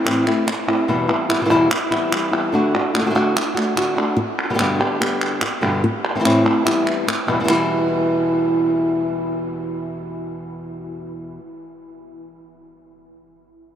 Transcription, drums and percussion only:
0.07 clap
0.27 clap
0.48 clap
0.68 clap
1.09 clap
1.30 clap
1.71 clap
1.92 clap
2.12 clap
2.33 clap
2.75 clap
2.95 clap
3.16 clap
3.37 clap
3.57 clap
3.77 clap
3.98 clap
4.39 clap
4.59 clap
4.81 clap
5.02 clap
5.21 clap
5.41 clap
6.05 clap
6.25 clap
6.46 clap
6.67 clap
6.87 clap
7.09 clap
7.28 clap
7.48 clap

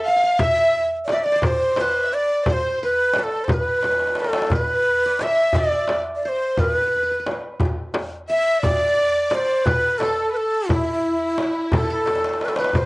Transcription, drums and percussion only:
0.06 darbuka ka
0.39 frame drum, darbuka dum
0.57 darbuka ka
0.74 darbuka ka
1.08 darbuka tek, frame drum
1.42 darbuka dum, frame drum
1.76 darbuka tek, frame drum
2.12 darbuka ka
2.46 darbuka dum, frame drum
2.64 darbuka ka
2.80 darbuka ka
3.14 darbuka tek, frame drum
3.48 darbuka dum, frame drum
3.83 darbuka tek, frame drum
3.91 darbuka ka
3.99 darbuka tek
4.07 darbuka ka
4.15 darbuka tek
4.24 darbuka ka
4.33 darbuka tek
4.42 darbuka ka
4.50 darbuka dum, frame drum
4.67 darbuka ka
5.19 darbuka tek, frame drum
5.53 darbuka dum, frame drum
5.88 darbuka tek, frame drum
6.23 darbuka ka
6.57 frame drum, darbuka dum
6.75 darbuka ka
6.93 darbuka ka
7.27 darbuka tek, frame drum
7.60 frame drum, darbuka dum
7.94 darbuka tek, frame drum
8.30 darbuka ka
8.63 frame drum, darbuka dum
8.82 darbuka ka
8.99 darbuka ka
9.31 darbuka tek, frame drum
9.66 darbuka dum, frame drum
10.00 darbuka tek, frame drum
10.69 darbuka dum, frame drum
11.38 darbuka tek, frame drum
11.72 darbuka dum, frame drum
12.06 darbuka tek, frame drum
12.16 darbuka ka
12.24 darbuka tek
12.33 darbuka ka
12.41 darbuka tek
12.48 darbuka ka
12.56 darbuka tek
12.64 darbuka ka
12.73 darbuka dum, frame drum

